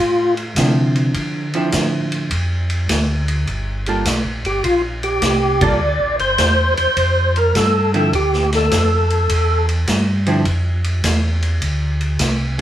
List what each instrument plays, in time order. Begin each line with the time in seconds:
Already playing: tonewheel organ F4
0.00 tonewheel organ A2
0.37 ride
0.56 tonewheel organ C3, hollow-body jazz guitar D3 F3 C4 E4, kick, snare, hi-hat pedal, ride
0.96 ride
1.14 tonewheel organ D3, kick, ride
1.54 hollow-body jazz guitar D3 F3 C4 E4, ride
1.72 tonewheel organ A2, kick, snare, hi-hat pedal, ride
2.12 ride
2.31 tonewheel organ F2, kick, ride
2.70 ride
2.89 tonewheel organ D2, kick, snare, hi-hat pedal, ride
3.28 ride
3.47 tonewheel organ G1, kick, ride
3.86 hollow-body jazz guitar G3 A#3 F4 A4, ride
4.05 tonewheel organ B1, kick, snare, hi-hat pedal, ride
4.25 tonewheel organ A#1
4.44 tonewheel organ G1 G4, ride
4.64 tonewheel organ A#1 F4, kick, ride
5.03 tonewheel organ G4, ride
5.22 tonewheel organ C2, kick, snare, hi-hat pedal, ride
5.61 hollow-body jazz guitar G3 A#3 F4 A4, tonewheel organ D5, kick, ride
5.79 tonewheel organ D2
6.00 tonewheel organ A#1
6.19 tonewheel organ G1 C5, ride
6.38 tonewheel organ E2, kick, snare, hi-hat pedal, ride
6.77 tonewheel organ E2 C5, ride
6.97 tonewheel organ F2, kick, ride
7.36 tonewheel organ A#4, ride
7.55 tonewheel organ G2 A4, kick, snare, hi-hat pedal, ride
7.94 hollow-body jazz guitar D3 F3 C4 E4, tonewheel organ A4, ride
8.13 tonewheel organ D2 G4, kick, ride
8.33 snare
8.52 tonewheel organ A4, snare, ride
8.71 tonewheel organ F2, kick, snare, hi-hat pedal, ride
9.10 ride
9.29 tonewheel organ E2, kick, ride
9.69 ride
9.88 tonewheel organ G2, kick, snare, hi-hat pedal, ride
10.26 hollow-body jazz guitar D3 F3 C4 E4, ride
10.45 tonewheel organ F2, kick, ride
10.84 ride
11.04 tonewheel organ E2, kick, snare, hi-hat pedal, ride
11.42 ride
11.62 tonewheel organ D2, kick, ride
12.01 ride
12.19 tonewheel organ C2, kick, snare, hi-hat pedal, ride